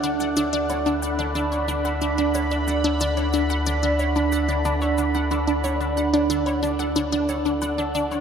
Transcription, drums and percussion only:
0.04 low woodblock, shaker
0.20 shaker
0.36 shaker
0.53 shaker
0.70 low woodblock, shaker
0.86 shaker
1.02 shaker
1.19 low woodblock, shaker
1.35 shaker
1.52 shaker
1.68 shaker
1.85 low woodblock, shaker
2.01 shaker
2.18 shaker
2.34 low woodblock, shaker
2.51 shaker
2.67 shaker
2.84 shaker
3.00 low woodblock, shaker
3.17 shaker
3.33 shaker
3.50 low woodblock, shaker
3.66 shaker
3.83 shaker
3.99 shaker
4.16 low woodblock, shaker
4.32 shaker
4.49 shaker
4.65 low woodblock, shaker
4.81 shaker
4.98 shaker
5.15 shaker
5.31 low woodblock, shaker
5.47 shaker
5.64 shaker
5.81 low woodblock, shaker
5.97 shaker
6.14 shaker
6.30 shaker
6.47 low woodblock, shaker
6.63 shaker
6.79 shaker
6.96 low woodblock, shaker
7.12 shaker
7.29 shaker
7.45 shaker
7.62 low woodblock, shaker
7.78 shaker
7.95 shaker
8.11 low woodblock, shaker

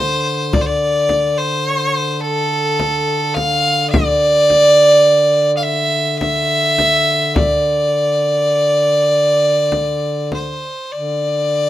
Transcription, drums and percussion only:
0.53 frame drum
1.09 frame drum
2.80 frame drum
3.37 frame drum
3.94 frame drum
4.50 frame drum
6.21 frame drum
6.78 frame drum
7.36 frame drum
9.72 frame drum
10.32 frame drum

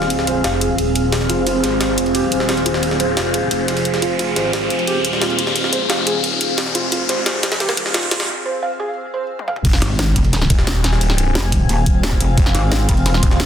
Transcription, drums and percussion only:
0.02 snare
0.10 closed hi-hat, ride
0.19 snare
0.27 closed hi-hat, ride
0.44 snare, closed hi-hat, ride
0.61 closed hi-hat, ride
0.78 closed hi-hat, ride
0.95 closed hi-hat, ride
1.12 snare, closed hi-hat, open hi-hat
1.21 snare
1.29 closed hi-hat, ride
1.47 closed hi-hat, ride
1.64 snare, closed hi-hat, ride
1.81 snare, closed hi-hat, ride
1.98 closed hi-hat, ride
2.06 ride
2.15 closed hi-hat, ride
2.32 closed hi-hat, ride
2.40 snare
2.49 snare, closed hi-hat, ride
2.57 ride
2.66 closed hi-hat, ride
2.74 snare
2.83 closed hi-hat, ride
2.91 snare
3.00 closed hi-hat, ride
3.17 snare, closed hi-hat, ride
3.34 closed hi-hat, ride
3.51 closed hi-hat, ride
3.68 snare, closed hi-hat, ride
3.77 ride
3.85 closed hi-hat
3.94 snare, ride
4.02 closed hi-hat, ride
4.19 closed hi-hat, ride
4.36 snare, closed hi-hat, ride
4.53 snare, closed hi-hat, ride
4.70 closed hi-hat, ride
4.79 ride
4.87 closed hi-hat, ride
5.05 closed hi-hat, ride
5.13 snare
5.22 snare, closed hi-hat, ride
5.30 ride
5.39 closed hi-hat, ride
5.47 snare
5.56 closed hi-hat, ride
5.64 snare
5.73 closed hi-hat, ride
5.90 snare, closed hi-hat, ride
6.07 closed hi-hat, ride
6.24 closed hi-hat, ride
6.41 closed hi-hat, ride
6.58 snare, closed hi-hat, open hi-hat
6.66 snare
6.75 closed hi-hat, ride
6.92 closed hi-hat, ride
7.09 snare, closed hi-hat, ride
7.26 snare, closed hi-hat, ride
7.43 snare, closed hi-hat, ride
7.52 snare, ride
7.60 snare, closed hi-hat, ride
7.69 snare, ride
7.77 closed hi-hat, ride
7.86 snare
7.94 snare, closed hi-hat, ride
8.03 ride
8.11 snare, closed hi-hat, ride
8.20 snare, ride
9.39 high tom
9.48 mid tom
9.56 mid tom
9.65 kick, closed hi-hat, crash, ride
9.73 snare
9.82 snare, closed hi-hat, ride
9.99 snare, closed hi-hat, ride
10.16 kick, closed hi-hat, ride
10.25 ride
10.33 snare, closed hi-hat, ride
10.42 snare
10.50 kick, closed hi-hat, ride
10.59 snare
10.67 snare, closed hi-hat, ride
10.76 ride
10.84 snare, closed hi-hat, ride
10.93 snare
11.01 closed hi-hat, ride
11.10 snare
11.18 closed hi-hat, ride
11.35 snare, closed hi-hat, ride
11.52 kick, closed hi-hat, ride
11.69 closed hi-hat, ride
11.86 kick, closed hi-hat
12.03 snare, closed hi-hat, ride
12.12 kick, snare
12.20 closed hi-hat, ride
12.38 kick, closed hi-hat, ride
12.46 snare
12.55 snare, closed hi-hat, ride
12.72 snare, closed hi-hat, ride
12.89 kick, closed hi-hat, ride
12.97 ride
13.06 snare, closed hi-hat, ride
13.14 snare
13.23 kick, closed hi-hat, ride
13.31 snare
13.40 snare, closed hi-hat, ride

